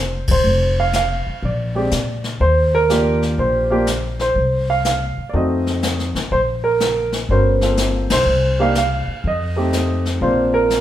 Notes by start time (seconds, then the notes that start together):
Already playing: F1 C5
0.27 E1 C5, kick, ride
0.44 F1, brush sweep
0.80 F5
0.93 F5, snare, hi-hat pedal
1.26 muted upright bass stroke
1.43 A#1 D5, brush sweep, kick
1.75 G#3 C4 D4 G4
1.91 A#2, snare, hi-hat pedal
2.24 snare
2.40 D#2 C5, brush sweep, kick
2.75 A#4
2.90 A#3 D4 F4 G4, snare, hi-hat pedal
3.22 snare
3.38 A#1 C5, brush sweep, kick
3.70 A#3 D4 F4 G4
3.87 snare, hi-hat pedal
4.19 C5, snare
4.35 C2, brush sweep, kick
4.70 F5
4.85 F5, snare, hi-hat pedal
5.17 muted upright bass stroke
5.29 F2 D5
5.33 A3 C4 D#4 F#4 D#5, brush sweep, kick
5.67 snare
5.83 snare, hi-hat pedal
5.99 snare
6.15 A1, snare
6.31 A#1 C5, brush sweep, kick
6.64 A#4
6.80 snare, hi-hat pedal
7.12 snare
7.29 G1 B3 C#4 F#4 A#4 C5, brush sweep, kick
7.61 A#3 C4 F4 A4, snare
7.77 snare, hi-hat pedal
8.10 B1 C5, snare, ride
8.26 C2, brush sweep
8.59 A#3 D4 D#4 G4 F5
8.75 F5, snare, hi-hat pedal
9.07 muted upright bass stroke
9.24 F2 D#5, brush sweep, kick
9.56 A3 C4 D#4 G4
9.73 snare, hi-hat pedal
10.06 snare
10.21 A#1 A#3 C4 D4 F4 C5, brush sweep, kick
10.54 A#4
10.70 snare, hi-hat pedal